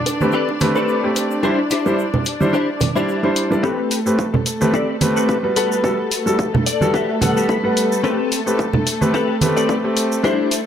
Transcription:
Already playing: string section D4 D5
0.06 muted clean electric guitar stroke, open hi-hat, high bongo, shaker
0.21 grand piano A3 C4 G4 B4, high conga, shaker
0.32 clean electric guitar C4 G4 A4 B4, shaker
0.49 high bongo
0.61 grand piano A3 C4 G4 B4, muted clean electric guitar stroke, open hi-hat, high conga, shaker
0.76 clean electric guitar C4 G4 A4 B4, high bongo, shaker
0.88 shaker
1.04 grand piano A3 C4 G4
1.16 open hi-hat, high bongo, shaker
1.31 shaker
1.43 grand piano G3 D4 E4 C5, clean electric guitar D4 E4 G4 C5, high bongo, shaker
1.70 clean electric guitar D4 E4 G4 C5, open hi-hat, shaker
1.86 grand piano G3 D4 E4 C5, high bongo, shaker
1.99 shaker
2.14 high bongo, low conga
2.25 muted clean electric guitar stroke, open hi-hat, shaker
2.40 grand piano G3 D4 E4 C5, high conga, shaker
2.53 clean electric guitar D4 E4 G4 C5, high bongo, shaker
2.81 muted clean electric guitar stroke, open hi-hat, high bongo, high conga, low conga, shaker
2.95 grand piano G3 D4 E4 D5, clean electric guitar D4 E4 G4 C5, shaker
3.09 shaker
3.23 grand piano G3 D4 E4 C5, high bongo
3.36 open hi-hat, shaker
3.51 grand piano G3 D4 E4 D5, high bongo, shaker
3.63 grand piano A3 C4 G4 B4, string section A3 A4, clean electric guitar C4 G4 A4 B4, kick, mid tom, cabasa
3.91 open hi-hat, cabasa
4.06 grand piano A3 C4 G4 B4, cabasa
4.19 kick, mid tom, cabasa
4.34 muted clean electric guitar stroke, low conga
4.46 muted clean electric guitar stroke, open hi-hat, cabasa
4.61 grand piano A3 C4 G4 B4, high conga, cabasa
4.73 clean electric guitar C4 G4 A4 D5, kick, mid tom, cabasa
5.01 grand piano A3 C4 G4 B4, open hi-hat, high conga, cabasa
5.16 clean electric guitar C4 G4 A4 B4, cabasa
5.29 kick, mid tom, cabasa
5.43 grand piano G3 B3 F#4 B4
5.56 clean electric guitar F#4 G4 A4 B4, open hi-hat, cabasa
5.72 cabasa
5.83 grand piano G3 B3 F#4 A4, kick, mid tom, cabasa
6.11 open hi-hat, cabasa
6.26 grand piano G3 B3 F#4 A4, cabasa
6.39 kick, mid tom, cabasa
6.54 muted clean electric guitar stroke, low conga
6.66 clean electric guitar D5, muted clean electric guitar stroke, open hi-hat, cabasa
6.81 grand piano G3 B3 F#4 A4, high conga, cabasa
6.94 clean electric guitar F#4 G4 A4 B4 E5, kick, mid tom, cabasa
7.21 grand piano G3 B3 A4 F#5, clean electric guitar F#5, open hi-hat, high conga, low conga, cabasa
7.36 clean electric guitar F#4 G4 A4 B4, cabasa
7.49 clean electric guitar B5, kick, mid tom, cabasa
7.64 grand piano G3 B3 B4 F#5
7.76 muted clean electric guitar stroke, open hi-hat, cabasa
7.92 cabasa
8.03 grand piano A3 C4 G4 B4, clean electric guitar C4 G4 A4 B4, kick, mid tom, cabasa
8.32 open hi-hat, cabasa
8.46 grand piano A3 C4 G4 B4, cabasa
8.59 kick, mid tom, cabasa
8.73 muted clean electric guitar stroke, low conga
8.86 muted clean electric guitar stroke, open hi-hat, cabasa
9.01 grand piano A3 C4 G4 B4, high conga, cabasa
9.14 clean electric guitar C4 G4 A4 B4, kick, mid tom, cabasa
9.41 grand piano A3 C4 G4 B4, open hi-hat, high conga, cabasa
9.57 clean electric guitar C4 G4 A4 D5, cabasa
9.69 kick, mid tom, cabasa
9.84 grand piano A3 C4 G4
9.97 muted clean electric guitar stroke, open hi-hat, cabasa
10.12 cabasa
10.23 grand piano G3 D4 E4 C5, clean electric guitar D4 E4 G4 C5, kick, mid tom, cabasa
10.51 open hi-hat, cabasa

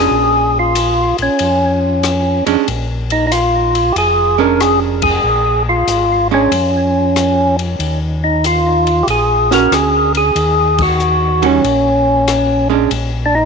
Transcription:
Already playing: hollow-body jazz guitar G#3 C#4 D4, tonewheel organ G#4
0.11 tonewheel organ A#1
0.59 tonewheel organ F4
0.75 hi-hat pedal, ride
1.18 tonewheel organ A#1, ride
1.22 tonewheel organ C#4
1.39 tonewheel organ F2, ride
2.03 cross-stick, hi-hat pedal, ride
2.46 tonewheel organ F2, hollow-body jazz guitar G#3 C#4 D4, ride
2.68 tonewheel organ A#1, ride
3.10 tonewheel organ D#4, ride
3.27 tonewheel organ D#4
3.31 tonewheel organ F4, hi-hat pedal, ride
3.75 ride
3.92 tonewheel organ F1 G4, ride
3.98 tonewheel organ G#4
4.38 hollow-body jazz guitar G#3 C#4 D4, tonewheel organ A#4
4.60 tonewheel organ G#4, cross-stick, hi-hat pedal, ride
5.02 tonewheel organ G#4, kick, ride
5.24 tonewheel organ A#1
5.69 tonewheel organ F4
5.88 tonewheel organ G#1, hi-hat pedal, ride
6.31 hollow-body jazz guitar G#3 C#4 D4, tonewheel organ C#4
6.51 tonewheel organ F2, ride
7.16 cross-stick, hi-hat pedal, ride
7.59 ride
7.79 tonewheel organ D#2, ride
8.24 tonewheel organ D#4
8.44 tonewheel organ F4, hi-hat pedal, ride
8.87 ride
9.03 tonewheel organ G4
9.07 tonewheel organ A#1 G#4, ride
9.51 hollow-body jazz guitar C#4 F#4, tonewheel organ A#4, snare
9.71 tonewheel organ D2 G#4, cross-stick, hi-hat pedal, ride
10.15 tonewheel organ G#4, ride
10.35 tonewheel organ D#2, ride
10.78 tonewheel organ F#4, kick, ride
11.00 hi-hat pedal
11.42 hollow-body jazz guitar D#3 G3 C#4 F#4, tonewheel organ C#4, ride
11.64 tonewheel organ A#1, ride
12.28 cross-stick, hi-hat pedal, ride
12.70 hollow-body jazz guitar G#3 C#4 D4
12.90 tonewheel organ A#1, ride
13.26 tonewheel organ D4
13.35 tonewheel organ D#4

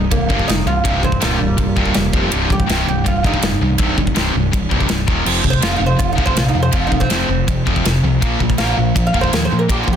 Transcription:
Already playing: distorted electric guitar G2, oud D#4
0.11 picked electric bass C1, distorted electric guitar C2 G2, oud A#3, kick, ride bell
0.29 picked electric bass G1, distorted electric guitar C2 G2 C3, kick
0.39 kick
0.48 picked electric bass F1, distorted electric guitar C2 G2, oud D#4, snare, ride bell
0.65 picked electric bass C2, distorted electric guitar C2 G2, oud F4
0.84 picked electric bass C1, distorted electric guitar C2 G2 C3, kick, ride bell
1.03 picked electric bass C1, distorted electric guitar C2 G2, oud C4, kick
1.12 kick
1.20 picked electric bass C1, distorted electric guitar C2 G2 C3, oud A#2 G3, snare, ride bell
1.39 picked electric bass C1, distorted electric guitar C2 G2
1.57 picked electric bass C1, distorted electric guitar C2 G2, kick, ride bell
1.76 picked electric bass C1, distorted electric guitar C2 G2 C3, kick
1.85 kick
1.94 picked electric bass E1, distorted electric guitar C2 G2, snare, ride bell
2.13 picked electric bass F1, distorted electric guitar F2 C3 F3, kick
2.31 picked electric bass C1, distorted electric guitar C2 G2 C3, ride bell
2.50 picked electric bass C1, distorted electric guitar C2 G2, oud G4, kick
2.60 kick
2.66 picked electric bass C1, distorted electric guitar C2 G2 C3, ride bell
2.70 snare
2.85 picked electric bass C1, distorted electric guitar C2 G2, oud G4
3.04 picked electric bass C1, distorted electric guitar C2 G2, oud F4, kick, ride bell
3.23 picked electric bass G1, distorted electric guitar C2 G2 C3, oud D#4, kick
3.34 kick
3.42 picked electric bass F1, distorted electric guitar C2 G2, snare, ride bell
3.61 distorted electric guitar C2 G2, picked electric bass C2
3.78 picked electric bass C1, distorted electric guitar C2 G2 C3, kick, ride bell
3.97 picked electric bass C1, distorted electric guitar C2 G2, kick
4.07 kick
4.14 picked electric bass C1, distorted electric guitar C2 G2 C3, snare, ride bell
4.34 picked electric bass C1, distorted electric guitar C2 G2
4.52 picked electric bass C1, distorted electric guitar C2 G2, kick, ride bell
4.69 picked electric bass C1, distorted electric guitar C2 G2 C3, kick
4.80 kick
4.88 picked electric bass C1, distorted electric guitar C2 G2, snare, ride bell
5.06 picked electric bass D#1, distorted electric guitar D#2 A#2 D#3, kick
5.25 picked electric bass F1, distorted electric guitar F2 C3 F3, crash
5.42 picked electric bass F1, distorted electric guitar F2 C3, kick
5.50 oud C5, kick
5.61 picked electric bass F1, distorted electric guitar F2 C3 F3, oud F4, snare, ride bell
5.76 picked electric bass F1, distorted electric guitar F2 C3, oud D#4
5.86 oud C5
5.96 picked electric bass F1, distorted electric guitar F2 C3, oud F4, kick, ride bell
6.13 distorted electric guitar F2 C3 F3, oud D#4
6.18 picked electric bass C1, kick
6.25 oud C5, kick
6.34 picked electric bass A#1, distorted electric guitar F2 C3, snare, ride bell
6.39 oud F4
6.49 oud D#4
6.54 distorted electric guitar F2 C3, picked electric bass F2
6.63 oud C5
6.71 picked electric bass F1, distorted electric guitar F2 C3 F3, oud F4, kick, ride bell
6.87 distorted electric guitar F2, oud D#4
6.91 picked electric bass F1, distorted electric guitar C3, kick
7.00 oud C4, kick
7.08 picked electric bass F1, distorted electric guitar F2 C3 F3, snare, ride bell
7.29 picked electric bass F1, distorted electric guitar F2 C3
7.47 picked electric bass F1, distorted electric guitar F2 C3, kick, ride bell
7.66 picked electric bass F1, distorted electric guitar F2 C3 F3, kick
7.76 kick
7.84 picked electric bass F1, distorted electric guitar F2 C3, snare, ride bell
8.03 picked electric bass C2, distorted electric guitar F2 C3
8.21 picked electric bass A#1, distorted electric guitar A#2 F3 A#3, kick, ride bell
8.39 picked electric bass A#1, distorted electric guitar A#2 F3, kick
8.50 kick
8.57 picked electric bass A#1, distorted electric guitar A#2 F3 A#3, oud F5, snare, ride bell
8.77 picked electric bass A#1, distorted electric guitar A#2 F3
8.95 picked electric bass A#1, distorted electric guitar A#2 F3, kick, ride bell
9.07 oud F5
9.13 picked electric bass F1, distorted electric guitar A#2 F3 A#3, kick
9.21 oud C5, kick
9.32 picked electric bass D#2, distorted electric guitar A#2 F3, oud A#4, snare, ride bell
9.45 oud C5
9.50 distorted electric guitar A#2 F3, picked electric bass A#2
9.59 oud A#4
9.68 picked electric bass A#1, distorted electric guitar A#2 F3 A#3, oud G4, kick, ride bell
9.83 picked electric bass A#1, distorted electric guitar A#2 F3, oud F4
9.88 kick
9.93 oud G4

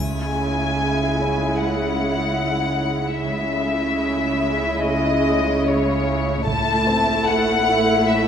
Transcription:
Already playing: double bass section C#2, synth drone C#2, cello section C#3, viola section E4, violin section G#5
0.00 viola section G#3
1.21 grand piano C#4 C#5
1.59 violin section F#5
3.21 double bass section C#2, synth drone C#2, cello section C#3, viola section G#3 E4, violin section E5
4.85 violin section D#5
5.65 violin section C#5
6.46 double bass section A1, synth drone A1, cello section A2, viola section A3 E4, violin section A5, taiko
6.87 grand piano C4 C5
7.27 violin section F#5
8.09 violin section E5

